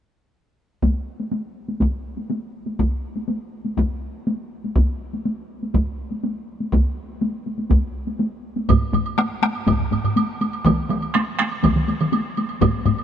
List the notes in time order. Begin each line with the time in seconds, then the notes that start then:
0.82 taiko, taiko high
1.20 taiko high
1.32 taiko high
1.68 taiko high
1.80 taiko, taiko high
2.17 taiko high
2.30 taiko high
2.66 taiko high
2.79 taiko, taiko high
3.16 taiko high
3.28 taiko high
3.65 taiko high
3.77 taiko, taiko high
4.27 taiko high
4.64 taiko high
4.76 taiko, taiko high
5.13 taiko high
5.25 taiko high
5.63 taiko high
5.74 taiko, taiko high
6.11 taiko high
6.23 taiko high
6.60 taiko high
6.73 taiko, taiko high
7.21 taiko high
7.46 taiko high
7.58 taiko high
7.70 taiko, taiko high
8.07 taiko high
8.19 taiko high
8.56 taiko high
8.69 taiko, taiko low-mid, taiko high, high woodblock
8.93 taiko low-mid, taiko high, high woodblock
9.06 taiko high, high woodblock
9.18 taiko rim, taiko high, high woodblock
9.30 taiko high
9.42 taiko rim, taiko high, high woodblock
9.55 taiko high, high woodblock
9.67 taiko, taiko low-mid, taiko high, high woodblock
9.79 taiko low-mid, taiko high
9.91 taiko low-mid, taiko high, high woodblock
10.04 taiko low-mid, taiko high, high woodblock
10.16 taiko high, high woodblock
10.41 taiko high, high woodblock
10.53 taiko high, high woodblock
10.65 taiko, taiko mid, taiko high, high woodblock
10.78 taiko high
10.90 taiko mid, taiko high, high woodblock
11.02 taiko high, high woodblock
11.14 taiko rim, taiko high, high woodblock
11.28 taiko high
11.39 taiko rim, taiko high, high woodblock
11.51 taiko high, high woodblock
11.63 taiko, taiko mid, taiko high, high woodblock
11.76 taiko mid
11.88 taiko mid, taiko high, high woodblock
12.00 taiko mid, taiko high, high woodblock
12.12 taiko high, high woodblock
12.37 taiko high, high woodblock
12.49 taiko high, high woodblock
12.61 taiko, taiko low-mid, taiko high, high woodblock
12.74 taiko high
12.85 taiko low-mid, taiko high, high woodblock
12.98 high woodblock